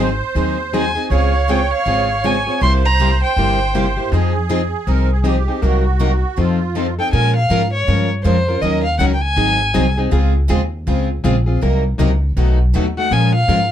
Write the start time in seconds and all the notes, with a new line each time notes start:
Already playing: G#1 C5
0.35 D#2 D#3 F#3 C4 D#4 G#4
0.73 D#3 F#3 C4 D#4 G#4 G#5
0.95 C4 D#4 G#4
1.10 C#2 C#3 G#3 C4 F4 G#4 C#5 F5
1.49 C#3 G#3 C4 F4 G#4 G5
1.73 F5
1.86 G#1 C#3 G#3 C4 F4 G#4
2.24 C#3 G#3 C4 F4 G#4 G#5
2.47 C4 F4 G#4
2.61 C2 C3 G3 A#3 E4 G4 C5 C6
2.86 A#5
3.00 C3 G3 A#3 E4 G4
3.24 G5
3.36 G1 C3 G3 A#3 E4 G4
3.75 C3 G3 A#3 E4 G4
3.97 A#3 E4 G4
4.12 F2 F3 C4 D#4 G#4
4.49 F3 C4 D#4 G#4
4.87 C2 F3 C4 D#4 G#4 A#4
5.11 G#4
5.24 F3 C4 D#4 G4 G#4
5.48 C4 D#4 G#4
5.62 C2 C3 F#3 A#3 D#4 F#4 A#4
6.00 C3 F#3 A#3 D#4 A#4
6.37 F2 F3 C4 D#4 F4 A4
6.75 F3 C4 D#4 A4
6.99 C4 D#4 A4 G5
7.13 A#2 F3 G#3 C#4 F4 A#4 G#5
7.36 F5
7.50 G#2 F3 G#3 C#4 F4 A#4
7.73 C#5
7.87 G2 F3 G#3 C#4 F4 A#4
8.23 F2 F3 G#3 C#4 F4 A#4 C5
8.48 C#4 F4 A#4
8.61 D#2 D#3 F#3 C#4 D#4 A#4 D#5
8.83 F5
8.99 C#2 D#3 F#3 C#4 D#4 A#4 F#5
9.14 G5
9.21 G#5
9.36 G#1 D#3 F#3 C4 D#4 G#4
9.74 C2 D#3 F#3 C4 D#4 G#4
9.97 C4 D#4 G#4
10.11 C#2 C#3 G#3 C4 F4 G#4
10.50 D#2 C#3 G#3 C4 F4 G#4
10.87 C#2 C#3 G#3 C4 F4 G#4
11.24 A#1 C#3 G#3 C4 F4 G#4
11.46 C4 F4 G#4
11.61 C2 C3 F#3 A#3 D#4 A#4
11.98 C#2 C3 F#3 A#3 D#4 A#4
12.37 B1 B2 D#3 F#3 A3 B3 D#4 F#4 A4
12.74 D#2 B2 D#3 F#3 A3 B3 D#4 F#4 A4
12.97 A3 D#4 F#4 F#5
13.11 A#2 F3 G#3 C#4 F4 A#4 G#5
13.35 F5
13.48 G#2 F3 G#3 C#4 F4 A#4